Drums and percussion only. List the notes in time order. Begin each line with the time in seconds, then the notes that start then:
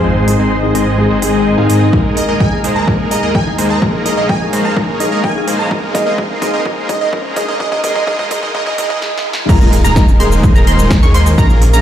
0.28 open hi-hat
0.75 open hi-hat
1.22 open hi-hat
1.70 open hi-hat
1.93 kick
2.17 open hi-hat
2.40 kick
2.64 open hi-hat
2.88 kick
3.11 open hi-hat
3.35 kick
3.58 open hi-hat
3.82 kick
4.06 open hi-hat
4.29 kick
4.53 open hi-hat
4.77 kick
5.00 open hi-hat
5.24 kick
5.48 open hi-hat
5.71 kick
5.95 kick, open hi-hat
6.18 kick
6.42 kick, open hi-hat
6.66 kick
6.89 kick, open hi-hat
7.13 kick
7.36 kick, open hi-hat
7.60 kick
7.72 kick
7.84 kick, open hi-hat
7.95 kick
8.07 kick
8.19 kick
8.31 kick, open hi-hat
8.43 kick
8.54 kick
8.66 kick
8.78 kick, open hi-hat
8.90 kick
9.02 snare
9.18 snare
9.33 snare
9.49 kick, crash, shaker
9.61 shaker
9.73 open hi-hat
9.85 shaker
9.96 kick, snare, shaker
10.08 shaker
10.20 open hi-hat
10.32 shaker
10.44 kick, shaker
10.55 shaker
10.67 open hi-hat
10.79 shaker
10.91 kick, snare, shaker
11.03 shaker
11.14 open hi-hat
11.26 shaker
11.38 kick, shaker
11.50 shaker
11.62 open hi-hat
11.74 shaker